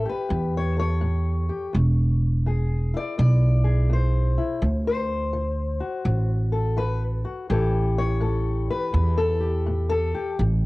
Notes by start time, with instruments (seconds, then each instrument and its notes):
Already playing: steel-string acoustic guitar A2
0.05 steel-string acoustic guitar G4 B4
0.29 upright bass E2, steel-string acoustic guitar A2
0.57 steel-string acoustic guitar C#5
0.77 steel-string acoustic guitar A4 C#5
1.01 steel-string acoustic guitar A2
1.49 steel-string acoustic guitar G4
1.73 upright bass E1, steel-string acoustic guitar E2
2.46 steel-string acoustic guitar E2 G#4
2.94 steel-string acoustic guitar E4 D5
3.18 upright bass B1, steel-string acoustic guitar E2 D5
3.64 steel-string acoustic guitar G#4
3.90 steel-string acoustic guitar E2 C5
4.38 steel-string acoustic guitar E4
4.62 upright bass D2, steel-string acoustic guitar D3
4.87 steel-string acoustic guitar C5
5.33 steel-string acoustic guitar D3
5.81 steel-string acoustic guitar F#4
6.05 upright bass A1, steel-string acoustic guitar D3
6.52 steel-string acoustic guitar A4
6.77 steel-string acoustic guitar D3 B4
7.25 steel-string acoustic guitar F#4
7.50 upright bass A1, steel-string acoustic guitar A2 E3 G4 A4 C#5
7.98 steel-string acoustic guitar C#5
8.20 steel-string acoustic guitar A2 A4
8.70 steel-string acoustic guitar B4
8.93 upright bass E2, steel-string acoustic guitar A2
9.18 steel-string acoustic guitar A4
9.40 steel-string acoustic guitar G4
9.66 steel-string acoustic guitar A2
9.89 steel-string acoustic guitar A4
10.15 steel-string acoustic guitar G4
10.39 upright bass A1, steel-string acoustic guitar A2